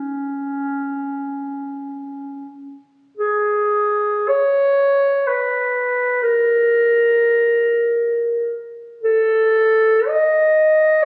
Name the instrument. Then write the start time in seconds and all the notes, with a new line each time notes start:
clarinet
Already playing: C#4
3.17 G#4
4.28 C#5
5.27 B4
6.22 A#4
9.03 A4
10.07 D#5